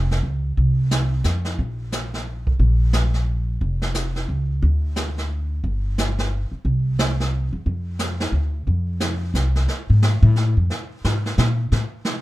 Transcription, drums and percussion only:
0.11 snare
0.57 brush sweep, kick
0.91 snare, hi-hat pedal
1.24 snare, hi-hat pedal
1.45 snare
1.58 brush sweep, kick
1.92 snare, hi-hat pedal
2.14 snare
2.47 kick
2.60 brush sweep, kick
2.93 snare, hi-hat pedal
3.14 snare
3.61 brush sweep, kick
3.82 snare
3.94 snare, hi-hat pedal
4.16 snare
4.62 brush sweep, kick
4.96 snare, hi-hat pedal
5.18 snare
5.64 brush sweep, kick
5.98 snare, hi-hat pedal
6.18 snare
6.65 brush sweep, kick
6.99 snare, hi-hat pedal
7.20 snare
7.66 brush sweep, kick
7.99 snare, hi-hat pedal
8.20 snare
8.66 brush sweep, kick
9.00 snare, hi-hat pedal
9.35 snare, hi-hat pedal
9.56 snare
9.68 brush sweep, snare
10.02 snare
10.36 snare
10.70 brush sweep, snare
11.05 snare
11.26 snare
11.38 snare
11.72 brush sweep, snare
12.05 snare

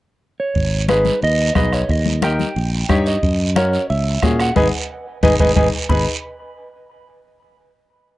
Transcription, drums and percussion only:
0.55 bombo low, high conga, long guiro
0.89 bombo rim, high conga, short guiro
1.05 high conga, short guiro
1.22 high conga, long guiro
1.55 bombo low, bombo rim, high conga, short guiro
1.73 bombo rim, short guiro
1.89 bombo low, high conga, long guiro
2.06 high conga
2.22 bombo rim, high conga, short guiro
2.39 high conga, short guiro
2.56 high conga, long guiro
2.89 bombo low, bombo rim, high conga, short guiro
3.06 short guiro
3.23 bombo low, high conga, long guiro
3.56 bombo rim, high conga, short guiro
3.73 short guiro
3.90 high conga, long guiro
4.22 bombo low, bombo rim, high conga, short guiro
4.39 bombo rim, short guiro
4.56 bombo low, high conga, long guiro
5.23 bombo low, high conga, long guiro
5.40 bombo low, high conga, long guiro
5.56 bombo low, high conga, long guiro
5.89 bombo low, low conga, long guiro

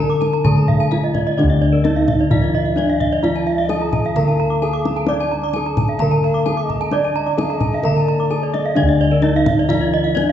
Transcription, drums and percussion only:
0.09 kendang slap
0.22 kendang high
0.33 kendang slap
0.45 kendang low
0.57 kendang slap
0.69 kendang low
0.80 kendang slap
0.92 kendang high
1.03 kendang slap
1.15 kendang high, kendang low
1.27 kendang slap
1.39 kendang high
1.50 kendang slap
1.75 kendang slap
1.85 kendang high
1.95 kendang slap
2.08 kendang high, kendang low
2.20 kendang slap
2.31 kendang low
2.44 kendang slap
2.78 kendang high
3.01 kendang low
3.12 kendang slap
3.24 kendang high
3.35 kendang slap
3.59 kendang slap
3.69 kendang high
3.81 kendang slap
3.93 kendang high, kendang low
4.05 kendang slap
4.16 kendang low
4.28 kendang slap
4.85 kendang high
4.97 kendang slap
5.07 kendang high
5.20 kendang slap
5.42 kendang slap
5.53 kendang high
5.66 kendang slap
5.77 kendang high, kendang low
5.88 kendang slap
5.99 kendang low
6.12 kendang slap
6.46 kendang high
6.70 kendang low
6.82 kendang slap
6.91 kendang high
7.04 kendang slap
7.27 kendang slap
7.38 kendang high
7.50 kendang slap
7.60 kendang high, kendang low
7.73 kendang slap
7.83 kendang low
7.95 kendang slap
8.18 kendang slap
8.43 kendang slap
8.54 kendang high
8.65 kendang slap
8.76 kendang high
8.88 kendang slap
9.11 kendang slap
9.22 kendang high
9.35 kendang slap
9.46 kendang high, kendang low
9.60 kendang slap
9.70 kendang low
9.84 kendang slap
10.17 kendang high

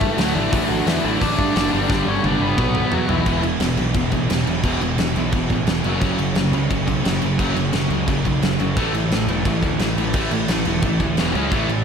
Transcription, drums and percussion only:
0.01 kick
0.18 snare, open hi-hat
0.53 kick, open hi-hat
0.87 snare, open hi-hat
1.21 kick, open hi-hat
1.39 kick
1.56 snare, open hi-hat
1.90 kick, snare
2.24 high tom
2.58 kick, mid tom
2.75 mid tom
2.92 floor tom
3.09 floor tom
3.26 kick, crash
3.43 crash
3.60 snare, crash
3.77 crash
3.94 kick, crash
4.12 kick, crash
4.30 snare, crash
4.47 crash
4.63 kick, crash
4.81 crash
4.98 snare, crash
5.16 crash
5.32 kick, crash
5.50 kick, crash
5.67 snare, crash
5.84 crash
6.02 kick, crash
6.19 crash
6.35 snare, crash
6.53 crash
6.71 kick, crash
6.88 kick, crash
7.05 snare, crash
7.22 crash
7.39 kick, crash
7.56 crash
7.73 snare, crash
7.90 crash
8.08 kick, crash
8.25 kick, crash
8.42 snare, crash
8.60 crash
8.77 kick, crash
8.94 crash
9.11 snare, crash
9.28 crash
9.45 kick, crash
9.63 kick, crash
9.79 snare, crash
9.98 crash
10.13 kick, crash
10.31 crash
10.48 snare, crash
10.65 crash
10.82 kick, crash
11.00 kick, crash
11.17 snare, crash
11.35 crash
11.51 kick, crash
11.69 crash

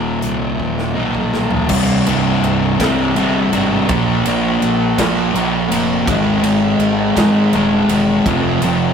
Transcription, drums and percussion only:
0.22 closed hi-hat
0.60 kick
0.79 snare
1.15 kick
1.34 snare
1.51 floor tom
1.69 kick, crash
2.07 ride
2.44 ride
2.80 kick, snare, ride
3.16 ride
3.53 ride
3.89 kick, ride
4.26 ride
4.62 ride
4.98 kick, snare, ride
5.36 ride
5.72 ride
6.07 kick, ride
6.44 ride
6.80 ride
7.17 kick, snare, ride
7.53 ride
7.89 ride
8.26 kick, ride
8.62 ride

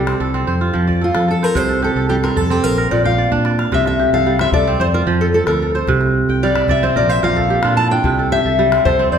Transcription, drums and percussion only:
0.07 calabash click
0.89 calabash thump
1.15 calabash click
1.55 calabash thump
1.83 calabash click
2.10 calabash click
2.24 calabash click
2.37 calabash thump
2.78 calabash click
3.06 calabash thump, calabash click
3.32 calabash thump
3.45 calabash click
3.59 calabash click
3.72 calabash thump
3.86 calabash click
4.39 calabash click
4.52 calabash thump
5.47 calabash click
5.87 calabash thump
6.01 calabash click
6.56 calabash click
6.68 calabash thump
7.36 calabash thump
7.63 calabash click
8.04 calabash thump
8.18 calabash click
8.72 calabash click
8.86 calabash thump

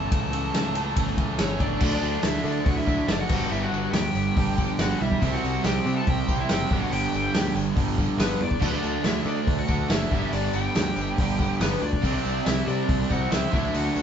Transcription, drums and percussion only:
0.12 kick, ride
0.33 ride
0.54 snare, ride
0.75 ride
0.96 kick, ride
1.18 kick, ride
1.39 snare, ride
1.60 kick, ride
1.80 kick, crash, tambourine
2.04 tambourine
2.23 snare, open hi-hat, tambourine
2.46 tambourine
2.66 kick, open hi-hat
2.87 kick, tambourine
3.08 snare, open hi-hat, tambourine
3.29 kick, crash
3.52 tambourine
3.74 tambourine
3.93 snare, open hi-hat, tambourine
4.15 tambourine
4.36 kick, open hi-hat
4.58 kick, tambourine
4.79 snare, open hi-hat, tambourine
5.01 tambourine
5.12 kick
5.22 kick, open hi-hat, tambourine
5.45 tambourine
5.64 snare, open hi-hat, tambourine
5.87 tambourine
6.07 kick, open hi-hat
6.28 kick, tambourine
6.49 snare, open hi-hat, tambourine
6.71 kick, tambourine
6.92 open hi-hat, tambourine
7.13 tambourine
7.35 snare, open hi-hat, tambourine
7.57 tambourine
7.77 kick, open hi-hat, tambourine
7.98 kick, tambourine
8.20 snare, open hi-hat, tambourine
8.41 tambourine
8.51 kick
8.62 kick, crash, tambourine
8.84 tambourine
9.04 snare, open hi-hat, tambourine
9.26 tambourine
9.47 kick, open hi-hat
9.68 kick, tambourine
9.90 snare, open hi-hat, tambourine
10.11 kick, tambourine
10.33 open hi-hat, tambourine
10.53 tambourine
10.75 snare, open hi-hat, tambourine
10.97 tambourine
11.18 kick, open hi-hat
11.40 kick, tambourine
11.61 snare, open hi-hat, tambourine
11.83 tambourine
11.93 kick
12.04 kick, open hi-hat, tambourine
12.25 tambourine
12.46 snare, open hi-hat, tambourine
12.68 tambourine
12.89 kick, open hi-hat
13.11 kick, tambourine
13.32 snare, open hi-hat, tambourine
13.53 kick, tambourine
13.74 open hi-hat, tambourine
13.96 tambourine

